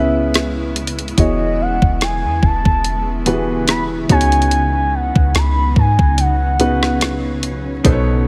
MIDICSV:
0, 0, Header, 1, 6, 480
1, 0, Start_track
1, 0, Tempo, 833333
1, 679, Time_signature, 4, 2, 24, 8
1, 4767, End_track
2, 0, Start_track
2, 0, Title_t, "Soft synth lead"
2, 0, Program_c, 0, 80
2, 0, Note_on_c, 0, 76, 95
2, 423, Note_off_c, 0, 76, 0
2, 687, Note_on_c, 0, 75, 91
2, 929, Note_on_c, 0, 78, 91
2, 938, Note_off_c, 0, 75, 0
2, 1164, Note_off_c, 0, 78, 0
2, 1169, Note_on_c, 0, 80, 94
2, 1410, Note_on_c, 0, 81, 116
2, 1419, Note_off_c, 0, 80, 0
2, 1884, Note_off_c, 0, 81, 0
2, 2131, Note_on_c, 0, 83, 101
2, 2212, Note_off_c, 0, 83, 0
2, 2369, Note_on_c, 0, 80, 109
2, 2849, Note_on_c, 0, 78, 91
2, 2857, Note_off_c, 0, 80, 0
2, 3084, Note_off_c, 0, 78, 0
2, 3091, Note_on_c, 0, 83, 89
2, 3308, Note_off_c, 0, 83, 0
2, 3332, Note_on_c, 0, 80, 99
2, 3571, Note_on_c, 0, 78, 94
2, 3580, Note_off_c, 0, 80, 0
2, 4285, Note_off_c, 0, 78, 0
2, 4767, End_track
3, 0, Start_track
3, 0, Title_t, "Grand piano"
3, 0, Program_c, 1, 0
3, 0, Control_c, 1, 64, 127
3, 0, Note_on_c, 1, 49, 72
3, 0, Note_on_c, 1, 59, 69
3, 0, Note_on_c, 1, 61, 67
3, 0, Note_on_c, 1, 64, 68
3, 0, Note_on_c, 1, 71, 83
3, 598, Note_off_c, 1, 49, 0
3, 599, Note_off_c, 1, 59, 0
3, 600, Note_off_c, 1, 61, 0
3, 601, Note_off_c, 1, 64, 0
3, 602, Note_off_c, 1, 71, 0
3, 676, Note_on_c, 1, 52, 74
3, 678, Note_on_c, 1, 59, 66
3, 680, Note_on_c, 1, 66, 65
3, 683, Note_on_c, 1, 68, 62
3, 685, Note_on_c, 1, 73, 79
3, 687, Control_c, 1, 64, 0
3, 773, Control_c, 1, 64, 127
3, 1532, Note_off_c, 1, 52, 0
3, 1533, Note_off_c, 1, 59, 0
3, 1534, Note_off_c, 1, 66, 0
3, 1535, Note_off_c, 1, 68, 0
3, 1536, Note_off_c, 1, 73, 0
3, 1876, Note_on_c, 1, 52, 77
3, 1878, Note_on_c, 1, 59, 69
3, 1880, Note_on_c, 1, 66, 70
3, 1882, Note_on_c, 1, 67, 55
3, 1885, Note_on_c, 1, 71, 87
3, 1920, Note_on_c, 1, 68, 70
3, 1921, Note_off_c, 1, 67, 0
3, 2351, Note_off_c, 1, 59, 0
3, 2355, Note_off_c, 1, 66, 0
3, 2356, Note_on_c, 1, 49, 78
3, 2357, Note_off_c, 1, 52, 0
3, 2359, Note_on_c, 1, 59, 74
3, 2361, Note_on_c, 1, 63, 77
3, 2362, Note_off_c, 1, 71, 0
3, 2364, Note_on_c, 1, 66, 74
3, 2366, Note_on_c, 1, 73, 93
3, 2367, Control_c, 1, 64, 0
3, 2379, Note_off_c, 1, 68, 0
3, 2456, Control_c, 1, 64, 127
3, 3212, Note_off_c, 1, 49, 0
3, 3213, Note_off_c, 1, 59, 0
3, 3214, Note_off_c, 1, 63, 0
3, 3216, Note_off_c, 1, 66, 0
3, 3217, Note_off_c, 1, 73, 0
3, 3797, Note_on_c, 1, 49, 75
3, 3799, Note_on_c, 1, 59, 71
3, 3801, Note_on_c, 1, 63, 69
3, 3804, Note_on_c, 1, 66, 72
3, 3805, Note_on_c, 1, 71, 85
3, 4438, Note_off_c, 1, 49, 0
3, 4440, Note_off_c, 1, 59, 0
3, 4441, Note_off_c, 1, 63, 0
3, 4442, Note_off_c, 1, 66, 0
3, 4443, Note_off_c, 1, 71, 0
3, 4516, Note_on_c, 1, 47, 90
3, 4518, Note_on_c, 1, 59, 83
3, 4520, Note_on_c, 1, 63, 80
3, 4522, Note_on_c, 1, 69, 77
3, 4526, Control_c, 1, 64, 0
3, 4526, Note_on_c, 1, 72, 77
3, 4563, Note_off_c, 1, 72, 0
3, 4563, Note_on_c, 1, 73, 99
3, 4612, Control_c, 1, 64, 127
3, 4767, Note_off_c, 1, 47, 0
3, 4767, Note_off_c, 1, 59, 0
3, 4767, Note_off_c, 1, 63, 0
3, 4767, Note_off_c, 1, 69, 0
3, 4767, Note_off_c, 1, 73, 0
3, 4767, End_track
4, 0, Start_track
4, 0, Title_t, "Ambient pad"
4, 0, Program_c, 2, 92
4, 0, Note_on_c, 2, 49, 71
4, 0, Note_on_c, 2, 56, 66
4, 0, Note_on_c, 2, 59, 70
4, 0, Note_on_c, 2, 64, 78
4, 2335, Note_off_c, 2, 64, 0
4, 2336, Note_off_c, 2, 56, 0
4, 2360, Note_on_c, 2, 54, 70
4, 2360, Note_on_c, 2, 63, 85
4, 3309, Note_off_c, 2, 63, 0
4, 3319, Note_on_c, 2, 61, 92
4, 4494, Note_off_c, 2, 59, 0
4, 4495, Note_off_c, 2, 49, 0
4, 4498, Note_off_c, 2, 54, 0
4, 4507, Note_off_c, 2, 61, 0
4, 4517, Note_on_c, 2, 49, 77
4, 4517, Note_on_c, 2, 59, 68
4, 4517, Note_on_c, 2, 63, 85
4, 4518, Note_on_c, 2, 57, 72
4, 4767, Note_off_c, 2, 49, 0
4, 4767, Note_off_c, 2, 57, 0
4, 4767, Note_off_c, 2, 59, 0
4, 4767, Note_off_c, 2, 63, 0
4, 4767, End_track
5, 0, Start_track
5, 0, Title_t, "808-style bass"
5, 0, Program_c, 3, 38
5, 0, Note_on_c, 3, 37, 107
5, 656, Note_off_c, 3, 37, 0
5, 679, Note_on_c, 3, 28, 113
5, 1034, Note_off_c, 3, 28, 0
5, 1050, Note_on_c, 3, 28, 110
5, 1291, Note_on_c, 3, 40, 97
5, 1300, Note_off_c, 3, 28, 0
5, 1395, Note_off_c, 3, 40, 0
5, 1400, Note_on_c, 3, 28, 104
5, 1523, Note_off_c, 3, 28, 0
5, 1530, Note_on_c, 3, 28, 102
5, 2336, Note_off_c, 3, 28, 0
5, 2360, Note_on_c, 3, 37, 102
5, 2946, Note_off_c, 3, 37, 0
5, 2971, Note_on_c, 3, 37, 97
5, 3076, Note_off_c, 3, 37, 0
5, 3082, Note_on_c, 3, 37, 113
5, 3311, Note_off_c, 3, 37, 0
5, 3320, Note_on_c, 3, 44, 101
5, 3444, Note_off_c, 3, 44, 0
5, 3452, Note_on_c, 3, 37, 102
5, 4497, Note_off_c, 3, 37, 0
5, 4521, Note_on_c, 3, 35, 113
5, 4767, Note_off_c, 3, 35, 0
5, 4767, End_track
6, 0, Start_track
6, 0, Title_t, "Drums"
6, 198, Note_on_c, 9, 42, 71
6, 204, Note_on_c, 9, 37, 100
6, 255, Note_off_c, 9, 42, 0
6, 262, Note_off_c, 9, 37, 0
6, 438, Note_on_c, 9, 42, 70
6, 496, Note_off_c, 9, 42, 0
6, 503, Note_on_c, 9, 42, 60
6, 561, Note_off_c, 9, 42, 0
6, 568, Note_on_c, 9, 42, 52
6, 622, Note_off_c, 9, 42, 0
6, 622, Note_on_c, 9, 42, 41
6, 678, Note_off_c, 9, 42, 0
6, 678, Note_on_c, 9, 36, 105
6, 678, Note_on_c, 9, 42, 69
6, 735, Note_off_c, 9, 42, 0
6, 736, Note_off_c, 9, 36, 0
6, 1049, Note_on_c, 9, 36, 95
6, 1106, Note_off_c, 9, 36, 0
6, 1159, Note_on_c, 9, 42, 63
6, 1164, Note_on_c, 9, 37, 114
6, 1216, Note_off_c, 9, 42, 0
6, 1221, Note_off_c, 9, 37, 0
6, 1398, Note_on_c, 9, 36, 93
6, 1455, Note_off_c, 9, 36, 0
6, 1529, Note_on_c, 9, 36, 97
6, 1586, Note_off_c, 9, 36, 0
6, 1638, Note_on_c, 9, 42, 61
6, 1696, Note_off_c, 9, 42, 0
6, 1878, Note_on_c, 9, 42, 72
6, 1936, Note_off_c, 9, 42, 0
6, 2117, Note_on_c, 9, 42, 73
6, 2124, Note_on_c, 9, 37, 100
6, 2175, Note_off_c, 9, 42, 0
6, 2181, Note_off_c, 9, 37, 0
6, 2358, Note_on_c, 9, 42, 71
6, 2359, Note_on_c, 9, 36, 105
6, 2416, Note_off_c, 9, 36, 0
6, 2416, Note_off_c, 9, 42, 0
6, 2424, Note_on_c, 9, 42, 61
6, 2482, Note_off_c, 9, 42, 0
6, 2489, Note_on_c, 9, 42, 50
6, 2545, Note_off_c, 9, 42, 0
6, 2545, Note_on_c, 9, 42, 43
6, 2600, Note_off_c, 9, 42, 0
6, 2600, Note_on_c, 9, 42, 66
6, 2657, Note_off_c, 9, 42, 0
6, 2970, Note_on_c, 9, 36, 96
6, 3027, Note_off_c, 9, 36, 0
6, 3080, Note_on_c, 9, 42, 65
6, 3085, Note_on_c, 9, 37, 119
6, 3138, Note_off_c, 9, 42, 0
6, 3143, Note_off_c, 9, 37, 0
6, 3319, Note_on_c, 9, 36, 96
6, 3376, Note_off_c, 9, 36, 0
6, 3449, Note_on_c, 9, 36, 98
6, 3507, Note_off_c, 9, 36, 0
6, 3559, Note_on_c, 9, 42, 65
6, 3617, Note_off_c, 9, 42, 0
6, 3799, Note_on_c, 9, 42, 73
6, 3857, Note_off_c, 9, 42, 0
6, 3933, Note_on_c, 9, 37, 83
6, 3990, Note_off_c, 9, 37, 0
6, 4039, Note_on_c, 9, 42, 74
6, 4046, Note_on_c, 9, 37, 107
6, 4097, Note_off_c, 9, 42, 0
6, 4103, Note_off_c, 9, 37, 0
6, 4279, Note_on_c, 9, 42, 72
6, 4337, Note_off_c, 9, 42, 0
6, 4519, Note_on_c, 9, 36, 102
6, 4520, Note_on_c, 9, 42, 72
6, 4577, Note_off_c, 9, 36, 0
6, 4577, Note_off_c, 9, 42, 0
6, 4767, End_track
0, 0, End_of_file